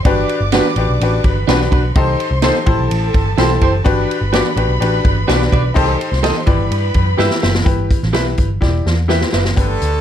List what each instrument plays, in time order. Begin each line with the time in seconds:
0.05 picked electric bass G1, upright piano D4 F#4 G4 B4, violin section D5 D6, kick, ride
0.29 ride
0.41 picked electric bass G1
0.52 clean electric guitar D4 F#4 B4, upright piano D4 F#4 G4 B4, snare, ride
0.76 picked electric bass A1, upright piano D4 F#4 G4 B4, ride
0.89 picked electric bass B1
1.01 picked electric bass A1, upright piano D4 F#4 G4 B4, ride
1.24 picked electric bass G1, violin section B4 B5, kick, ride
1.47 picked electric bass B1, clean electric guitar D4 F#4 B4, upright piano D4 F#4 G4 B4, snare, ride
1.61 snare
1.71 picked electric bass B1, clean electric guitar D4 F#4 B4, kick, ride
1.94 picked electric bass C2, upright piano D#4 G4 A4 C5, violin section C5 C6, kick, ride
2.20 ride
2.31 picked electric bass C2
2.42 clean electric guitar D#4 A4 C5, upright piano D#4 G4 A4 C5, snare, ride
2.65 picked electric bass A1, upright piano E4 G4 A4 C5, violin section A4 A5, kick, ride
2.79 picked electric bass B1
2.91 picked electric bass A1, ride
3.14 picked electric bass G1, kick, ride
3.38 picked electric bass B1, clean electric guitar E4 G4 C5, upright piano E4 G4 A4 C5, snare, ride
3.61 picked electric bass F#1, clean electric guitar E4 G4 C5, kick, ride
3.84 picked electric bass G1, upright piano D4 F#4 G4 B4, violin section B4 B5, kick, ride
4.11 ride
4.21 picked electric bass G1
4.32 upright piano D4 F#4 G4 B4, clean electric guitar F#4 B4 D5, snare, ride
4.56 picked electric bass A1, upright piano D4 F#4 G4 B4, ride
4.69 picked electric bass B1
4.80 picked electric bass A1, upright piano D4 F#4 G4 B4, ride
5.05 picked electric bass G1, kick, ride
5.27 picked electric bass B1, upright piano D4 F#4 G4 B4, clean electric guitar F#4 B4 D5, snare, ride
5.42 snare
5.52 picked electric bass B1, clean electric guitar F#4 B4 D5, kick, ride
5.74 picked electric bass C2, horn section D#3 G3 C4 G4, upright piano D#4 G4 A4 C5, violin section C5 C6, kick, ride
6.01 ride
6.12 picked electric bass C2, snare
6.22 upright piano D#4 G4 A4 C5, clean electric guitar G4 A4 D#5, snare, ride
6.46 picked electric bass G1, upright piano E4 G4 B4 D5, violin section B4 B5, kick, ride
6.59 picked electric bass G1
6.71 picked electric bass G2, ride
6.94 picked electric bass F#2, kick, ride
7.17 picked electric bass G2, upright piano E4 G4 B4 E5, clean electric guitar G4 B4 E5, snare
7.31 snare
7.42 picked electric bass F#1, clean electric guitar G4 B4 E5, snare
7.55 snare
7.64 picked electric bass G1, upright piano E4 G4 B4, kick, closed hi-hat
7.91 kick, closed hi-hat
8.03 picked electric bass A1, snare
8.13 picked electric bass B1, upright piano E4 G4 B4, clean electric guitar G4 B4 E5, snare, closed hi-hat
8.38 picked electric bass G1, kick, closed hi-hat
8.61 picked electric bass E1, upright piano E4 G4 D5, kick, snare
8.86 picked electric bass E2, snare
9.08 upright piano E4 G4 B4, clean electric guitar G4 B4 E5, snare
9.21 snare
9.33 picked electric bass F#1, clean electric guitar G4 B4 E5, snare
9.45 snare
9.56 picked electric bass G1, horn section D3 A3 B3 A4, upright piano D4 G4 B4, kick, closed hi-hat
9.82 picked electric bass D2, closed hi-hat